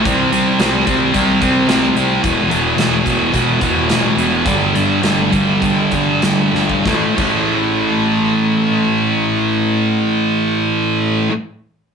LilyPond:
<<
  \new Staff \with { instrumentName = "Distorted electric guitar" } { \clef bass \time 4/4 \key g \lydian \tempo 4 = 100 <c g c'>8 <c g c'>8 <c g c'>8 <c g c'>8 <c g c'>8 <c g c'>8 <c g c'>8 <c g c'>8 | <e, b, e>8 <e, b, e>8 <e, b, e>8 <e, b, e>8 <e, b, e>8 <e, b, e>8 <e, b, e>8 <e, b, e>8 | <g, d g>8 <g, d g>8 <g, d g>8 <g, d g>8 <g, d g>8 <g, d g>8 <g, d g>8 <g, d g>8 | <a, e a>8 <a, e a>2.~ <a, e a>8~ |
<a, e a>1 | }
  \new Staff \with { instrumentName = "Picked electric bass" } { \clef bass \time 4/4 \key g \lydian c,4 c,8 c,8 c,8 c,8 c,8 c,8 | e,,8 e,,8 e,,8 e,,8 e,,8 e,,8 a,,8 e,,8 | g,,4 g,,8 g,,8 g,,8 g,,8 g,,8 g,,8 | a,,8 a,,2.~ a,,8~ |
a,,1 | }
  \new DrumStaff \with { instrumentName = "Drums" } \drummode { \time 4/4 <hh bd>8 hh8 <hh sn>8 <hh bd>8 <hh bd>8 <hh bd>8 <hh sn>8 hh8 | <hh bd>8 hh8 <hh sn>8 <hh bd>8 <hh bd>8 <hh bd>8 <hh sn>8 hh8 | <hh bd>8 hh8 <hh sn>8 <hh bd>8 <hh bd>8 <hh bd>8 <hh sn>8 sn16 bd16 | <bd sn>8 <cymc bd>8 r4 r4 r4 |
r4 r4 r4 r4 | }
>>